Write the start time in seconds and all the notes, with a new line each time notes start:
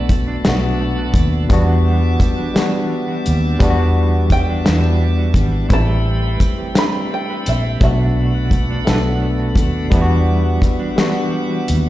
Already playing: B1 B2 A3 B3 D4 F#4 A4 D5 A5 B5
0.09 A3, kick, closed hi-hat
0.27 D4
0.44 B1 B2 A3 B3 D4 F#4, snare, closed hi-hat
0.49 F#4
0.63 D4
0.81 A3
0.97 F#4
1.14 D#2 A3, kick, closed hi-hat
1.33 D4
1.49 E2 E3 G3 B3 D4 F#4 E5 D6, kick, closed hi-hat
1.53 F#4
1.70 D4
1.86 G3
2.03 F#4
2.20 G3, muted fingered electric bass stroke, kick, closed hi-hat
2.36 D4
2.54 E3 G3 B3 D4 F#4, snare, closed hi-hat
2.59 F#4
2.71 D4
2.89 G3
3.08 F#4
3.26 D#2 G3, closed hi-hat
3.45 D4
3.59 E2 E3 G3 B3 D4 F#4, kick, closed hi-hat
3.63 F#4
3.70 F#4
3.78 D4
3.96 G3
4.14 F#4
4.30 G3 G5, kick, closed hi-hat
4.50 D4
4.64 E2 E3 G3 B3 D4 F#4, snare, closed hi-hat
4.69 E4
4.85 D4
5.02 G3
5.18 F#4
5.34 G#1 G3, kick, closed hi-hat
5.52 D4
5.69 A1 G3 A3 C4 A4 B4 G5 B5, kick, closed hi-hat
5.73 E4 A5
5.88 G4
6.05 C4
6.23 B4
6.40 C4, muted fingered electric bass stroke, kick, closed hi-hat
6.58 G4
6.74 G3 A3 C4 B4, snare, closed hi-hat
6.78 D4 B5
6.93 G4
7.11 C4 G5
7.30 B4
7.46 A#1 C4 E5, closed hi-hat
7.65 G4
7.80 B1 B2 A3 B3 D4 F#4 D5 E5 F#5, kick, closed hi-hat
7.85 F#4
8.00 D4
8.17 A3
8.35 F#4
8.51 A3, kick, closed hi-hat
8.70 D4
8.85 B1 B2 A3 B3 D4 F#4, snare, closed hi-hat
8.89 A4
9.05 D4
9.22 A3
9.40 F#4
9.56 D#2 A3, kick, closed hi-hat
9.75 D4
9.90 E2 E3 G3 B3 D4 F#4 E5 D6, kick, closed hi-hat
9.95 E4
10.01 F#4
10.10 D4
10.28 G3
10.45 F#4
10.62 G3, muted fingered electric bass stroke, kick, closed hi-hat
10.80 D4
10.96 E3 G3 B3 D4 F#4, snare, closed hi-hat
11.00 F#4
11.32 G3
11.49 F#4
11.67 D#2 G3, closed hi-hat